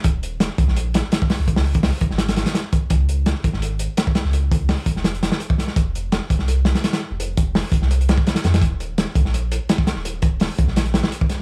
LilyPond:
<<
  \new Staff \with { instrumentName = "Sub bass" } { \clef bass \time 4/4 \key f \phrygian \tempo 4 = 168 ees,,4~ ees,,16 r16 des,16 bes,,4 r4 des,16~ | des,4~ des,16 r16 ces,16 aes,,4 r4 r16 | des,4~ des,16 r16 ces,16 aes,,4 r4 des,16~ | des,4~ des,16 r16 ces,16 f,,4 r4 r16 |
f,,4~ f,,16 r16 ees,,16 c,4 r4 f,,16~ | f,,4~ f,,16 r16 ees,,16 c,4 r8. f,8 | ees,,4~ ees,,16 r16 des,16 bes,,4 r4 ees,,16~ | ees,,4~ ees,,16 r16 des,16 bes,,4 r4 r16 | }
  \new DrumStaff \with { instrumentName = "Drums" } \drummode { \time 4/4 <hh bd>8 hh8 <hh sn>8 <hh bd>16 sn16 hh8 <hh sn>8 <hh sn>16 bd16 <hho sn>8 | <hh bd>16 <hho sn>8 <hh bd>16 <hho sn>8 <hh bd>16 sn16 <hh sn>16 <hh sn>16 <hh sn>16 <hh sn>16 <hh sn>8 <hh bd>8 | <hh bd>8 hh8 <hh sn>8 <hh bd>16 sn16 hh8 hh8 <hh sn>16 bd16 <hh sn>16 sn16 | hh8 <hh bd>8 <hho sn>8 <hh bd>16 sn16 <hh sn>16 hh16 <hh sn>16 sn16 hh16 bd16 <hh sn>16 sn16 |
<hh bd>8 hh8 <hh sn>8 <hh bd>16 sn16 hh8 <hh sn>16 <hh sn>16 <hh sn>16 <hh sn>8. | hh8 <hh bd>8 <hho sn>8 <hh bd>16 sn16 hh16 hh16 <hh sn>16 bd16 <hh sn>16 <hh sn>16 <hh sn>16 <hh sn>16 | <hh bd>8 hh8 <hh sn>8 <hh bd>16 sn16 hh8 hh8 <hh sn>16 bd16 <hh sn>16 sn16 | hh8 <hh bd>8 <hho sn>8 <hh bd>16 sn16 <hh sn>16 hh16 <hh sn>16 sn16 hh16 bd16 <hh sn>8 | }
>>